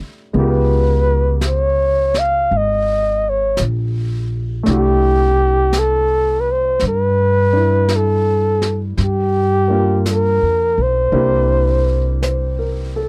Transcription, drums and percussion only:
0, 0, Header, 1, 2, 480
1, 0, Start_track
1, 0, Key_signature, 0, "major"
1, 0, Tempo, 1079137
1, 154, Time_signature, 4, 2, 24, 8
1, 4474, Tempo, 1090909
1, 5806, End_track
2, 0, Start_track
2, 0, Title_t, "Drums"
2, 153, Note_on_c, 9, 25, 31
2, 628, Note_off_c, 9, 25, 0
2, 628, Note_on_c, 9, 25, 30
2, 628, Note_on_c, 9, 38, 37
2, 628, Note_on_c, 9, 44, 47
2, 673, Note_off_c, 9, 38, 0
2, 673, Note_off_c, 9, 44, 0
2, 953, Note_on_c, 9, 38, 23
2, 997, Note_off_c, 9, 38, 0
2, 1112, Note_off_c, 9, 25, 0
2, 1112, Note_on_c, 9, 25, 33
2, 1588, Note_off_c, 9, 25, 0
2, 1588, Note_on_c, 9, 25, 38
2, 1588, Note_on_c, 9, 38, 37
2, 1588, Note_on_c, 9, 44, 52
2, 1632, Note_off_c, 9, 38, 0
2, 1632, Note_off_c, 9, 44, 0
2, 2073, Note_off_c, 9, 25, 0
2, 2073, Note_on_c, 9, 25, 31
2, 2073, Note_on_c, 9, 38, 27
2, 2117, Note_off_c, 9, 38, 0
2, 2547, Note_off_c, 9, 25, 0
2, 2547, Note_on_c, 9, 25, 30
2, 2547, Note_on_c, 9, 38, 38
2, 2547, Note_on_c, 9, 44, 51
2, 2592, Note_off_c, 9, 38, 0
2, 2592, Note_off_c, 9, 44, 0
2, 3023, Note_off_c, 9, 25, 0
2, 3023, Note_on_c, 9, 25, 31
2, 3023, Note_on_c, 9, 38, 26
2, 3067, Note_off_c, 9, 38, 0
2, 3507, Note_off_c, 9, 25, 0
2, 3507, Note_on_c, 9, 25, 35
2, 3507, Note_on_c, 9, 38, 43
2, 3507, Note_on_c, 9, 44, 44
2, 3552, Note_off_c, 9, 38, 0
2, 3552, Note_off_c, 9, 44, 0
2, 3833, Note_on_c, 9, 38, 25
2, 3877, Note_off_c, 9, 38, 0
2, 3992, Note_off_c, 9, 25, 0
2, 3992, Note_on_c, 9, 25, 26
2, 3992, Note_on_c, 9, 38, 26
2, 4036, Note_off_c, 9, 38, 0
2, 4473, Note_off_c, 9, 25, 0
2, 4473, Note_on_c, 9, 25, 36
2, 4473, Note_on_c, 9, 38, 41
2, 4473, Note_on_c, 9, 44, 52
2, 4517, Note_off_c, 9, 38, 0
2, 4517, Note_off_c, 9, 44, 0
2, 4949, Note_off_c, 9, 25, 0
2, 4949, Note_on_c, 9, 25, 35
2, 5427, Note_off_c, 9, 25, 0
2, 5427, Note_on_c, 9, 25, 38
2, 5427, Note_on_c, 9, 38, 36
2, 5427, Note_on_c, 9, 44, 54
2, 5471, Note_off_c, 9, 38, 0
2, 5471, Note_off_c, 9, 44, 0
2, 5806, Note_off_c, 9, 25, 0
2, 5806, End_track
0, 0, End_of_file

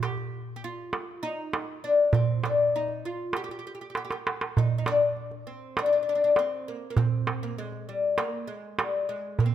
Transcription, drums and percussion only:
0, 0, Header, 1, 2, 480
1, 0, Start_track
1, 0, Tempo, 604230
1, 1700, Time_signature, 4, 2, 24, 8
1, 7586, End_track
2, 0, Start_track
2, 0, Title_t, "Darbuka"
2, 22, Note_on_c, 9, 63, 57
2, 101, Note_off_c, 9, 63, 0
2, 138, Note_on_c, 9, 62, 28
2, 217, Note_off_c, 9, 62, 0
2, 738, Note_on_c, 9, 63, 65
2, 818, Note_off_c, 9, 63, 0
2, 1219, Note_on_c, 9, 63, 65
2, 1298, Note_off_c, 9, 63, 0
2, 1690, Note_on_c, 9, 64, 95
2, 1770, Note_off_c, 9, 64, 0
2, 1812, Note_on_c, 9, 62, 21
2, 1891, Note_off_c, 9, 62, 0
2, 1935, Note_on_c, 9, 63, 59
2, 2014, Note_off_c, 9, 63, 0
2, 2053, Note_on_c, 9, 62, 26
2, 2132, Note_off_c, 9, 62, 0
2, 2289, Note_on_c, 9, 62, 27
2, 2368, Note_off_c, 9, 62, 0
2, 2646, Note_on_c, 9, 63, 61
2, 2726, Note_off_c, 9, 63, 0
2, 2772, Note_on_c, 9, 62, 29
2, 2852, Note_off_c, 9, 62, 0
2, 3138, Note_on_c, 9, 63, 56
2, 3217, Note_off_c, 9, 63, 0
2, 3261, Note_on_c, 9, 62, 65
2, 3341, Note_off_c, 9, 62, 0
2, 3390, Note_on_c, 9, 63, 72
2, 3469, Note_off_c, 9, 63, 0
2, 3506, Note_on_c, 9, 62, 74
2, 3585, Note_off_c, 9, 62, 0
2, 3629, Note_on_c, 9, 64, 76
2, 3709, Note_off_c, 9, 64, 0
2, 3862, Note_on_c, 9, 63, 62
2, 3942, Note_off_c, 9, 63, 0
2, 3982, Note_on_c, 9, 62, 29
2, 4061, Note_off_c, 9, 62, 0
2, 4104, Note_on_c, 9, 62, 23
2, 4183, Note_off_c, 9, 62, 0
2, 4220, Note_on_c, 9, 62, 29
2, 4300, Note_off_c, 9, 62, 0
2, 4582, Note_on_c, 9, 63, 69
2, 4661, Note_off_c, 9, 63, 0
2, 5054, Note_on_c, 9, 63, 58
2, 5133, Note_off_c, 9, 63, 0
2, 5533, Note_on_c, 9, 64, 81
2, 5613, Note_off_c, 9, 64, 0
2, 5777, Note_on_c, 9, 63, 60
2, 5856, Note_off_c, 9, 63, 0
2, 5899, Note_on_c, 9, 62, 25
2, 5979, Note_off_c, 9, 62, 0
2, 6022, Note_on_c, 9, 62, 21
2, 6101, Note_off_c, 9, 62, 0
2, 6136, Note_on_c, 9, 62, 26
2, 6215, Note_off_c, 9, 62, 0
2, 6496, Note_on_c, 9, 63, 65
2, 6575, Note_off_c, 9, 63, 0
2, 6979, Note_on_c, 9, 63, 71
2, 7059, Note_off_c, 9, 63, 0
2, 7457, Note_on_c, 9, 64, 69
2, 7536, Note_off_c, 9, 64, 0
2, 7586, End_track
0, 0, End_of_file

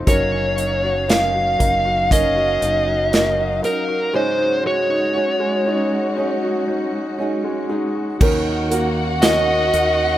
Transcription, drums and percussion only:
0, 0, Header, 1, 2, 480
1, 0, Start_track
1, 0, Tempo, 1016949
1, 35, Time_signature, 4, 2, 24, 8
1, 4804, End_track
2, 0, Start_track
2, 0, Title_t, "Drums"
2, 34, Note_on_c, 9, 36, 97
2, 34, Note_on_c, 9, 42, 74
2, 81, Note_off_c, 9, 36, 0
2, 81, Note_off_c, 9, 42, 0
2, 274, Note_on_c, 9, 42, 54
2, 321, Note_off_c, 9, 42, 0
2, 517, Note_on_c, 9, 42, 73
2, 520, Note_on_c, 9, 38, 87
2, 564, Note_off_c, 9, 42, 0
2, 567, Note_off_c, 9, 38, 0
2, 756, Note_on_c, 9, 36, 68
2, 757, Note_on_c, 9, 42, 53
2, 803, Note_off_c, 9, 36, 0
2, 804, Note_off_c, 9, 42, 0
2, 996, Note_on_c, 9, 36, 78
2, 1000, Note_on_c, 9, 42, 87
2, 1044, Note_off_c, 9, 36, 0
2, 1047, Note_off_c, 9, 42, 0
2, 1238, Note_on_c, 9, 42, 61
2, 1285, Note_off_c, 9, 42, 0
2, 1478, Note_on_c, 9, 42, 70
2, 1482, Note_on_c, 9, 38, 95
2, 1525, Note_off_c, 9, 42, 0
2, 1529, Note_off_c, 9, 38, 0
2, 1718, Note_on_c, 9, 42, 53
2, 1766, Note_off_c, 9, 42, 0
2, 3874, Note_on_c, 9, 36, 109
2, 3875, Note_on_c, 9, 49, 84
2, 3922, Note_off_c, 9, 36, 0
2, 3922, Note_off_c, 9, 49, 0
2, 4113, Note_on_c, 9, 42, 64
2, 4161, Note_off_c, 9, 42, 0
2, 4353, Note_on_c, 9, 42, 78
2, 4356, Note_on_c, 9, 38, 96
2, 4357, Note_on_c, 9, 54, 82
2, 4400, Note_off_c, 9, 42, 0
2, 4403, Note_off_c, 9, 38, 0
2, 4404, Note_off_c, 9, 54, 0
2, 4595, Note_on_c, 9, 42, 59
2, 4643, Note_off_c, 9, 42, 0
2, 4804, End_track
0, 0, End_of_file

